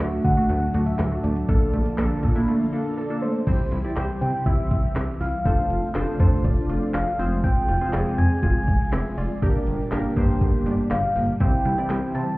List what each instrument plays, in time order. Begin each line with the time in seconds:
Already playing: string machine A2 D3 F#3 D4 F#4, soft synth lead E5
0.00 analog polysynth A3 D4 F#4, synth arpeggio sound F#4, snare, clap, closed hi-hat
0.24 analog synth bass D3, soft synth lead F#5, kick, closed hi-hat
0.37 analog polysynth A3 D4 F#4, closed hi-hat
0.49 analog synth bass D2, synth arpeggio sound A3, soft synth lead F#5, closed hi-hat
0.74 analog synth bass D2, analog polysynth A3 D4 F#4, synth arpeggio sound F#4, closed hi-hat
0.86 soft synth lead E5, closed hi-hat
0.99 analog synth bass D2, synth arpeggio sound F#3, snare, clap, closed hi-hat
1.12 analog polysynth A3 D4 F#4
1.24 analog synth bass D2, synth arpeggio sound A3, soft synth lead D5, closed hi-hat
1.36 closed hi-hat
1.49 analog synth bass A#1, string machine F3 A#3 F4 A4, analog polysynth A#3 D4 A4, synth arpeggio sound A4, kick, closed hi-hat
1.73 analog synth bass A#1, synth arpeggio sound A3, closed hi-hat
1.86 closed hi-hat
1.98 analog synth bass A#1, synth arpeggio sound A#3, analog polysynth A#3 D4 A4, snare, clap, closed hi-hat
2.23 analog synth bass A#2, synth arpeggio sound A4, kick, closed hi-hat
2.35 analog polysynth A#3 D4 E4, closed hi-hat
2.48 synth arpeggio sound A3
2.73 analog polysynth A#3 D4 A4
2.97 synth arpeggio sound A4, soft synth lead D5
3.10 analog polysynth A#3 D4 A4
3.22 synth arpeggio sound A3, soft synth lead C5
3.47 analog synth bass C2, string machine C3 E3 G3 E4 G4, synth arpeggio sound C4, analog polysynth C4 E4 G4 C5, soft synth lead C5, kick, closed hi-hat, crash
3.72 analog synth bass C2, synth arpeggio sound E4, closed hi-hat
3.84 analog polysynth C4 E4 G4 D5
3.96 analog synth bass C2, analog polysynth C4 E4 G4 C5, synth arpeggio sound G4, snare, clap, closed hi-hat
4.21 analog synth bass C3, synth arpeggio sound C4, soft synth lead G5, closed hi-hat
4.46 analog synth bass C2, synth arpeggio sound E4, soft synth lead E5, kick, closed hi-hat
4.71 analog synth bass C2, soft synth lead E5, kick, closed hi-hat
4.96 analog synth bass C2, synth arpeggio sound C4, snare, clap, closed hi-hat
5.21 analog synth bass C2, synth arpeggio sound E4, soft synth lead F5, open hi-hat
5.45 analog synth bass F1, string machine C3 F3 A3 D4 F4, analog polysynth D4 F4 A4 C5, synth arpeggio sound A4, kick, closed hi-hat
5.70 analog synth bass F1, closed hi-hat
5.95 analog synth bass F1, analog polysynth D4 F4 A4 C5, synth arpeggio sound F4, snare, clap, closed hi-hat
6.20 analog synth bass F2, analog polysynth D4 F4 A4 C5, synth arpeggio sound A4, soft synth lead C5, kick, closed hi-hat
6.44 analog synth bass F1, soft synth lead D5, kick, closed hi-hat
6.69 analog synth bass F1, synth arpeggio sound F4, soft synth lead D5, closed hi-hat
6.94 analog synth bass F1, synth arpeggio sound A4, soft synth lead F5, snare, clap, closed hi-hat
7.19 analog synth bass F1, string machine G#3 G#4, synth arpeggio sound C4, analog polysynth C4 F4 G#4 C5, open hi-hat
7.44 synth arpeggio sound C4, soft synth lead G5, kick, closed hi-hat
7.68 analog synth bass F1, synth arpeggio sound F4, closed hi-hat
7.81 analog polysynth C4 F4 G#4 C5
7.93 analog synth bass F1, analog polysynth C4 F4 G#4 D5, synth arpeggio sound G#4, snare, clap, closed hi-hat
8.18 analog synth bass F2, synth arpeggio sound C4, soft synth lead G#5, closed hi-hat
8.43 analog synth bass F1, synth arpeggio sound F4, soft synth lead G#5, kick, closed hi-hat
8.68 analog synth bass F1, kick, closed hi-hat
8.92 analog synth bass F1, synth arpeggio sound C4, soft synth lead E5, snare, clap, closed hi-hat
9.17 analog synth bass F1, synth arpeggio sound F4, soft synth lead D5, open hi-hat
9.42 analog synth bass G1, string machine A#2 D3 G3 D4 G4, analog polysynth A#3 D4 G4 A#4, synth arpeggio sound G4, kick, closed hi-hat
9.67 analog synth bass G1, closed hi-hat
9.92 analog synth bass G1, analog polysynth A#3 D4 G4 A#4, synth arpeggio sound D4, snare, clap, closed hi-hat
10.16 analog synth bass G2, analog polysynth A#3 D4 G4 C5, synth arpeggio sound G4, kick, closed hi-hat
10.41 analog synth bass G1, kick, closed hi-hat
10.66 analog synth bass G1, synth arpeggio sound D4, soft synth lead D5, closed hi-hat
10.91 analog synth bass G1, synth arpeggio sound G4, soft synth lead F5, snare, clap, closed hi-hat
11.16 analog synth bass G1, synth arpeggio sound A#3, open hi-hat
11.40 analog synth bass C2, string machine C3 E3 E4, synth arpeggio sound C4, analog polysynth C4 E4 G4 C5, soft synth lead G5, kick, closed hi-hat
11.65 analog synth bass C2, synth arpeggio sound E4, closed hi-hat
11.78 analog polysynth C4 E4 G4 D5
11.90 analog synth bass C2, analog polysynth C4 E4 G4 C5, synth arpeggio sound G4, snare, clap, closed hi-hat
12.15 analog synth bass C3, synth arpeggio sound C4, soft synth lead A5, closed hi-hat